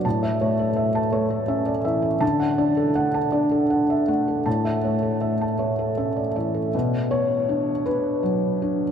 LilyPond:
<<
  \new Staff \with { instrumentName = "Felt piano" } { \time 6/8 \key b \minor \tempo 4. = 54 a''16 e''16 cis''16 a'16 e''16 a''16 cis''16 a'16 e''16 d''16 e''16 a'16 | a''16 fis''16 d''16 a'16 fis''16 a''16 d''16 a'16 fis''16 e''16 fis''16 a'16 | a''16 e''16 cis''16 a'16 e''16 a''16 cis''16 a'16 e''16 d''16 e''16 a'16 | r8 cis''4 b'4. | }
  \new Staff \with { instrumentName = "Felt piano" } { \time 6/8 \key b \minor a,8 a4 a8 cis'8 e8 | d8 d'4 d'4 a8 | a,8 a4 a8 cis'8 e8 | b,8 b8 d'8 d'8 fis8 d'8 | }
>>